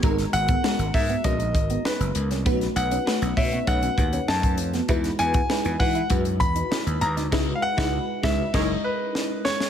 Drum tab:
CC |----------------|----------------|----------------|x-------x-------|
HH |xxxx-xoxxxxx-xxx|xxxx-xoxxxxx-xxx|xxxx-xoxxxxx-xxx|----------------|
SD |-o--o-------o--o|-o--o-------o--o|-o--o-------o--o|o--o--o-o---o-oo|
BD |o--o--o-o-o-----|o-----o-o-o--o--|o--o--o-o-o-----|o--o--o-o-------|